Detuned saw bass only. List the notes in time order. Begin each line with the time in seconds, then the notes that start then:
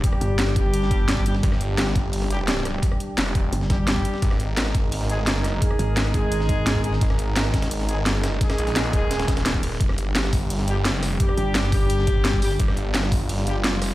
1.43 G1
3.18 F1
4.22 G#1
5.19 G1
5.47 F#1
7.01 G#1
7.98 G1
8.26 F#1
8.58 A#1
8.93 D#1
9.81 G1
10.78 F#1
11.06 F1
12.60 G1
13.57 F#1
13.85 F1